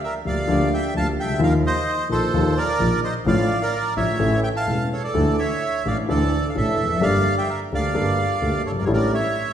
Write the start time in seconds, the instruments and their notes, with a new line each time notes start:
0.04 bandoneon A#4 E5
0.25 double bass D2, grand piano D2 D3 F3 A#3 D4 G4, bandoneon D5 F5
0.47 grand piano D2 D3 F3 A#3 D4 G4, double bass D2
0.74 bandoneon E5 G5
0.94 grand piano D2 D3 F3 A#3 D4 G4, double bass D2, bandoneon A5
0.98 bandoneon F5
1.18 double bass C#2, bandoneon E5 G5
1.24 grand piano C2
1.28 grand piano C#2
1.34 grand piano D2
1.39 grand piano D#2 D#3 F3 A#3 F4, double bass D#2
1.43 bandoneon A#4 F5
1.66 bandoneon C5 D#5
2.09 grand piano A#1 A#2 D#3 F3 A#3 F4, double bass A#1, bandoneon A4 C5
2.33 double bass D#2, grand piano D#2 D#3 F3 A#3 F4
2.57 bandoneon A#4 D5
2.79 grand piano A#1 A#2 D#3 F3 A#3 F4, double bass A#1
3.04 bandoneon C5 D#5
3.26 double bass A1, grand piano A1 A2 D3 F3 A3 F4, bandoneon D5 F5
3.62 bandoneon A#4 D5
3.96 double bass A1, grand piano A1 A2 D3 F3 A3 F4, bandoneon C#5 E5
4.19 double bass A1, grand piano A1 A2 E3 A3 C#4 A4
4.44 bandoneon E5 G5
4.56 bandoneon F5 A5
4.67 double bass E1, grand piano E1 E2 E3 A3 C#4 A4
4.93 bandoneon A4 C#5
5.04 bandoneon A4 D5
5.14 grand piano D2 D3 E3 A3 D4 A4, double bass D2
5.39 bandoneon C#5 E5
5.85 double bass A1, grand piano A1 A2 E3 A3 D4 A4, bandoneon D5 F5
6.09 grand piano D2 D3 E3 A3 D4 A4, double bass D2, bandoneon A4 D5
6.49 bandoneon F5
6.55 double bass A1, grand piano A1 A2 E3 A3 D4 A4, bandoneon A4 E5
6.79 double bass F1
6.84 grand piano E2
6.90 grand piano F2
6.95 grand piano F#2
7.01 double bass G1, grand piano G1 G2 G3 A#3 D4 A4, bandoneon D5 F5
7.38 bandoneon E5 G5
7.49 bandoneon A#4 E5
7.72 grand piano D2 D3 G3 A#3 D4 A4, double bass D2, bandoneon D5 F5
7.94 grand piano G1 G2 G3 A#3 D4 A4, double bass G1
8.42 double bass D2, grand piano D2 D3 G3 A#3 D4 A4
8.65 double bass G1, bandoneon A4 C#5
8.71 grand piano F#1
8.76 grand piano G1, bandoneon A#4 D5
8.82 grand piano G#1, bandoneon C#5
8.86 grand piano A1 A2 G3 D4 E4 A4, double bass A1
8.93 bandoneon A#4 D5
9.14 bandoneon C#5 E5